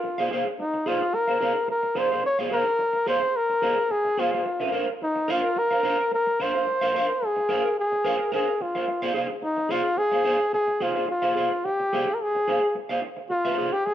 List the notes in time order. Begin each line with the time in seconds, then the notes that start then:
Already playing: F4
0.04 muted clean electric guitar stroke
0.18 G#4 C5 F5
0.31 G#4 C5 F5
0.46 muted clean electric guitar stroke
0.59 D#4, muted clean electric guitar stroke
0.74 muted clean electric guitar stroke
0.86 F4 G#4 C5 F5
1.01 muted clean electric guitar stroke
1.14 A#4, muted clean electric guitar stroke
1.28 G#4 C5 F5
1.41 G#4 C5 F5
1.55 muted clean electric guitar stroke
1.68 A#4, muted clean electric guitar stroke
1.83 muted clean electric guitar stroke
1.95 G#4 C5 F5
2.11 G#4 C5 F5
2.24 C#5, muted clean electric guitar stroke
2.39 G#4 C5 F5
2.51 G#4 A#4 C5 F5
2.66 muted clean electric guitar stroke
2.79 muted clean electric guitar stroke
2.93 muted clean electric guitar stroke
3.06 G#4 C5 F5
3.21 muted clean electric guitar stroke
3.37 A#4
3.49 muted clean electric guitar stroke
3.62 G#4 C5 F5
3.77 muted clean electric guitar stroke
3.91 G#4, muted clean electric guitar stroke
4.05 muted clean electric guitar stroke
4.17 F4 G#4 C5 F5
4.33 G#4 C5 F5
4.45 muted clean electric guitar stroke
4.60 A#4 C5 F5
4.72 A#4 C5 F5
4.88 muted clean electric guitar stroke
5.02 D#4, muted clean electric guitar stroke
5.16 muted clean electric guitar stroke
5.28 F4 A#4 C5 F5
5.43 muted clean electric guitar stroke
5.56 A#4, muted clean electric guitar stroke
5.71 A#4 C5 F5
5.83 A#4 C5 F5
5.99 muted clean electric guitar stroke
6.11 A#4, muted clean electric guitar stroke
6.27 muted clean electric guitar stroke
6.40 A#4 C5 F5
6.54 A#4 C5 F5
6.67 muted clean electric guitar stroke
6.81 A#4 C5 F5
6.94 A#4 C5 F5
7.09 muted clean electric guitar stroke
7.22 G#4, muted clean electric guitar stroke
7.36 muted clean electric guitar stroke
7.49 A#4 C5 F5
7.65 muted clean electric guitar stroke
7.80 G#4
7.92 muted clean electric guitar stroke
8.04 A#4 C5 F5
8.19 muted clean electric guitar stroke
8.32 G#4 A#4 C5 F5
8.47 muted clean electric guitar stroke
8.61 F4, muted clean electric guitar stroke
8.75 A#4 C5 F5
8.88 muted clean electric guitar stroke
9.02 G#4 C5 F5
9.14 G#4 C5 F5
9.29 muted clean electric guitar stroke
9.42 D#4, muted clean electric guitar stroke
9.57 muted clean electric guitar stroke
9.69 F4 G#4 C5 F5
9.84 muted clean electric guitar stroke
9.97 G#4, muted clean electric guitar stroke
10.11 G#4 C5 F5
10.25 G#4 C5 F5
10.39 muted clean electric guitar stroke
10.53 G#4, muted clean electric guitar stroke
10.67 muted clean electric guitar stroke
10.80 F4 G#4 C5 F5
10.95 G#4 C5 F5
11.08 F4, muted clean electric guitar stroke
11.22 G#4 C5 F5
11.35 G#4 C5 F5
11.51 muted clean electric guitar stroke
11.65 G4, muted clean electric guitar stroke
11.80 muted clean electric guitar stroke
11.93 G#4 C5 F5
12.07 muted clean electric guitar stroke
12.14 A#4
12.22 G#4
12.35 muted clean electric guitar stroke
12.47 G#4 C5 F5
12.62 muted clean electric guitar stroke
12.75 muted clean electric guitar stroke
12.89 G#4 C5 F5
13.02 muted clean electric guitar stroke
13.17 muted clean electric guitar stroke
13.30 F4, muted clean electric guitar stroke
13.45 G#4 C5 F5
13.58 G#4 C5 F5
13.73 G4, muted clean electric guitar stroke
13.86 G#4, muted clean electric guitar stroke